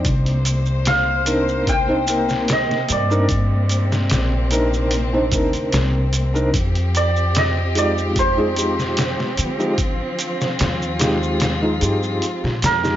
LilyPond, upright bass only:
\new Staff \with { instrumentName = "Upright bass" } { \clef bass \time 4/4 \key c \minor \tempo 4 = 74 c,2.~ c,16 r16 g,8~ | g,4 bes,,4. d,8 c,4 | f,2.~ f,16 r16 d8~ | d4 ees,4. g,8 r16 bes,16 f,8 | }